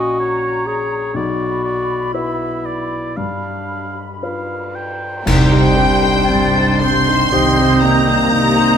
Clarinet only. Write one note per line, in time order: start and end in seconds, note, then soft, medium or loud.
0.00 0.68 F#4 medium
0.66 1.15 G#4 medium
1.16 2.15 F#4 medium
2.13 3.18 E4 medium
3.16 4.22 D4 medium
5.26 5.79 D#4 medium
5.78 7.33 D4 medium
7.32 8.33 C4 medium
8.32 8.78 D#4 medium